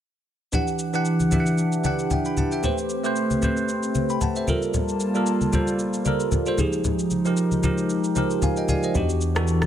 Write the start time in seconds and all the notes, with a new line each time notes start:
0.52 E3 D4 G4 F#5, low conga, shaker
0.67 shaker
0.79 shaker
0.93 E3 D4 G4 F#5, shaker
1.05 shaker
1.20 high conga, shaker
1.31 E3 D4 G4 E5, high conga, low conga, shaker
1.40 F#5
1.46 shaker
1.58 shaker
1.72 shaker
1.84 E3 D4 G4 F#5, high conga, shaker
1.99 shaker
2.11 E5 G5, high conga, low conga, shaker
2.25 G5 B5, shaker
2.37 F#5 A5, high conga, low conga, shaker
2.52 E5 G5, shaker
2.63 A3 C4 G4 B4 C5, low conga, shaker
2.78 shaker
2.90 shaker
3.04 A3 G4 B4 C5, shaker
3.16 shaker
3.30 high conga, shaker
3.42 A3 G4 B4 C5, high conga, low conga, shaker
3.57 shaker
3.69 shaker
3.83 shaker
3.95 high conga, shaker
4.09 G5 B5, shaker
4.21 F#5 A5, high conga, low conga, shaker
4.36 C5 E5, shaker
4.47 G3 A#3 F4 A4 A#4 A5, high conga, low conga, shaker
4.62 shaker
4.74 low conga, shaker
4.89 shaker
5.00 shaker
5.14 G3 F4 A4 A#4, shaker
5.26 shaker
5.41 high conga, shaker
5.52 G3 F4 A4 C5, high conga, low conga, shaker
5.67 shaker
5.79 shaker
5.94 shaker
6.05 G3 F4 A4 A#4, high conga, shaker
6.20 shaker
6.32 high conga, low conga, shaker
6.46 G3 F4 A4 C5, shaker
6.58 F3 G#3 D#4 G4 G#4, high conga, low conga, shaker
6.73 shaker
6.84 low conga, shaker
6.99 shaker
7.11 high conga, shaker
7.25 F3 D#4 G4 A#4, shaker
7.37 shaker
7.51 high conga, shaker
7.63 F3 D#4 G4 A#4, high conga, low conga, shaker
7.78 shaker
7.90 shaker
8.04 shaker
8.15 F3 D#4 G4 A#4, high conga, shaker
8.30 shaker
8.42 F5 G#5, high conga, low conga, shaker
8.57 D#5 G5, shaker
8.68 D5 F5 G#5, high conga, low conga, shaker
8.83 C5 D#5, shaker
8.94 E2 E3 D4 F#4 G4 F#5, low conga, shaker
9.10 shaker
9.21 shaker
9.35 E3 D4 F#4 A4, cross-stick, shaker
9.47 shaker
9.62 cross-stick, high conga, shaker